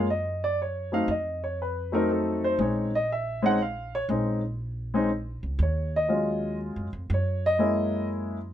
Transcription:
0.00 1.04 F#2 medium
0.10 0.42 D#5 medium
0.44 0.58 D5 medium
0.62 0.93 C#5 medium
0.92 1.06 F#3 medium
0.92 1.07 A3 medium
0.92 1.07 C4 medium
0.92 1.07 D#4 medium
0.92 1.09 F5 medium
1.08 2.55 F2 medium
1.08 1.43 D#5 medium
1.44 1.59 C#5 medium
1.62 1.93 B4 medium
1.92 2.55 F#3 medium
1.92 2.56 A3 medium
1.92 2.56 C4 medium
1.92 2.56 D#4 medium
1.92 2.09 A#4 medium
2.12 2.43 A4 medium
2.44 2.59 C5 medium
2.59 4.05 A#1 medium
2.59 2.90 G#3 medium
2.59 2.90 C4 soft
2.59 2.90 C#4 soft
2.59 2.90 D#4 medium
2.59 2.94 C#5 medium
2.95 3.10 D#5 medium
3.12 3.44 E5 medium
3.42 3.57 G#3 medium
3.42 3.57 C4 medium
3.42 3.57 C#4 medium
3.42 3.58 D#4 medium
3.42 3.60 F#5 medium
3.62 3.94 F5 medium
3.95 4.04 C#5 medium
4.09 5.39 A#1 medium
4.09 4.40 G#3 medium
4.09 4.40 C4 soft
4.09 4.40 C#4 medium
4.09 4.41 D#4 medium
4.94 5.08 G#3 medium
4.94 5.08 C4 medium
4.94 5.08 C#4 medium
4.94 5.09 D#4 medium
5.43 5.58 C#2 medium
5.59 6.72 D#2 medium
5.59 5.94 C#5 medium
5.96 6.57 D#5 medium
6.08 6.86 F#3 medium
6.08 6.87 G#3 soft
6.08 6.87 C#4 soft
6.08 6.87 F4 medium
6.76 6.92 F#2 medium
6.93 7.08 F2 medium
7.10 8.53 F#2 medium
7.14 7.45 C#5 medium
7.46 8.07 D#5 medium
7.59 8.36 G#3 medium
7.59 8.37 A#3 medium
7.59 8.37 C#4 medium
7.59 8.37 E4 medium

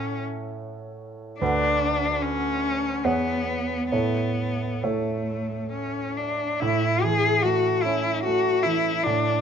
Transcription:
0.00 1.37 A2 soft
0.00 0.20 C#4 medium
0.00 1.37 A4 soft
0.00 1.37 C#5 soft
0.00 1.37 F#5 soft
1.40 3.01 D2 soft
1.40 2.24 D4 medium
1.40 3.02 A4 soft
1.40 3.01 B4 soft
1.40 3.02 F#5 soft
2.22 3.06 C#4 medium
3.04 3.90 E2 soft
3.04 3.91 B3 medium
3.04 3.90 G#4 soft
3.04 3.90 C#5 soft
3.04 3.90 F#5 soft
3.92 4.81 A2 soft
3.92 4.85 B3 soft
3.92 4.81 A4 soft
3.92 4.81 C#5 soft
3.92 4.81 E5 soft
4.84 6.58 A2 soft
4.84 5.72 A3 soft
4.84 6.58 A4 soft
4.84 6.58 C#5 soft
4.84 6.58 E5 soft
5.72 6.19 C#4 soft
6.17 6.62 D4 soft
6.60 9.00 A2 soft
6.60 7.04 E4 medium
7.03 7.68 E3 soft
7.03 7.44 G#4 medium
7.42 8.09 A3 soft
7.42 7.84 F#4 medium
7.83 8.49 C#4 soft
7.83 8.23 E4 medium
8.24 8.89 A3 soft
8.24 8.64 F#4 medium
8.63 9.05 E3 soft
8.63 9.05 E4 medium
9.03 9.41 A2 soft
9.03 9.41 D4 medium

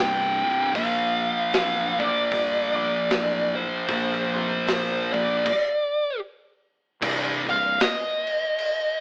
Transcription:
0.00 0.75 G1 loud
0.00 0.40 C2 medium
0.00 0.74 C2 medium
0.00 0.41 G2 medium
0.00 0.74 G2 medium
0.00 0.41 C3 loud
0.00 0.73 C3 medium
0.00 0.75 G5 loud
0.42 0.73 C2 medium
0.42 0.74 G2 medium
0.42 0.73 C3 medium
0.74 1.31 A#1 loud
0.74 3.53 A#2 loud
0.74 2.03 A#2 medium
0.74 3.54 F3 loud
0.74 2.01 F3 loud
0.74 3.55 A#3 loud
0.74 1.99 A#3 loud
0.74 2.04 F5 loud
0.74 kick loud
0.74 open hi-hat medium
1.53 2.10 D1 medium
1.53 snare loud
1.53 open hi-hat medium
1.99 3.87 A#2 medium
1.99 3.87 F3 medium
1.99 3.86 A#3 medium
1.99 2.74 D5 loud
1.99 kick loud
2.31 2.88 G1 medium
2.31 kick loud
2.31 open hi-hat medium
2.76 3.55 D5 medium
3.10 3.67 D1 medium
3.10 snare loud
3.10 open hi-hat soft
3.55 3.86 A#2 medium
3.55 3.87 F3 medium
3.55 3.86 A#3 medium
3.55 4.33 C5 medium
3.87 4.22 A#1 medium
3.87 5.42 A#2 medium
3.87 5.10 A#2 medium
3.87 5.43 F3 loud
3.87 5.11 F3 loud
3.87 5.44 A#3 loud
3.87 kick loud
3.87 open hi-hat medium
3.92 5.12 A#3 medium
4.13 snare soft
4.34 4.58 F1 medium
4.34 5.13 C5 loud
4.66 5.23 A#1 medium
4.66 snare loud
4.66 open hi-hat medium
5.13 5.45 A#2 medium
5.13 5.44 F3 medium
5.13 5.43 A#3 medium
5.13 6.19 D5 medium
5.13 kick medium
5.46 kick loud
5.46 crash loud
7.01 7.45 C1 loud
7.01 7.46 C2 loud
7.01 kick loud
7.01 crash loud
7.01 crash medium
7.47 7.78 C1 medium
7.47 7.73 C2 medium
7.47 7.80 F5 loud
7.47 crash medium
7.80 9.00 D#5 medium
7.80 snare loud
7.80 crash medium
8.27 crash medium
8.58 crash medium

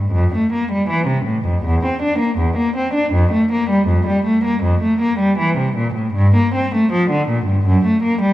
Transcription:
0.00 0.11 G2 soft
0.12 0.30 F2 medium
0.35 0.51 A3 medium
0.53 0.70 A#3 medium
0.72 0.89 G3 medium
0.89 1.07 E3 medium
1.07 1.25 C3 medium
1.25 1.44 A2 medium
1.46 1.63 F2 medium
1.65 1.82 E2 medium
1.85 2.01 C4 medium
2.02 2.19 D4 medium
2.19 2.37 A#3 medium
2.38 2.56 E2 medium
2.57 2.75 A#3 medium
2.77 2.94 C4 medium
2.94 3.12 D4 medium
3.13 3.31 F2 medium
3.32 3.50 A3 medium
3.52 3.69 A#3 medium
3.70 3.88 G3 medium
3.88 4.06 F2 medium
4.07 4.25 G3 medium
4.26 4.44 A3 medium
4.44 4.63 A#3 medium
4.63 4.81 F2 medium
4.83 5.00 A3 medium
5.01 5.19 A#3 medium
5.19 5.37 G3 medium
5.38 5.56 E3 medium
5.58 5.76 C3 medium
5.77 5.95 A#2 medium
5.94 6.14 A2 medium
6.14 6.34 G2 medium
6.36 6.54 A#3 medium
6.55 6.73 C4 medium
6.75 6.92 A3 medium
6.92 7.10 F3 medium
7.11 7.28 D3 medium
7.29 7.47 A#2 medium
7.46 7.65 G2 medium
7.66 7.84 F#2 medium
7.85 8.03 A3 medium
8.03 8.21 A#3 medium
8.22 8.33 G3 medium

